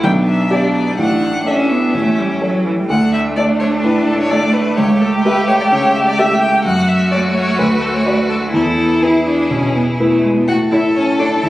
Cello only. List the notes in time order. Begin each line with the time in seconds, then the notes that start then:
0.05 B3
0.51 B3
0.98 A3
1.47 C#4
1.71 B3
1.94 A3
2.18 G3
2.42 F#3
2.66 E3
2.78 G3
2.90 A3
6.65 A3
8.54 B3
9.03 E4
9.27 D4
9.51 C#4
9.75 B3
9.99 A3
10.24 G#3
10.36 B3
10.48 F#4
10.72 E4
10.95 C#4
11.19 D4
11.42 E4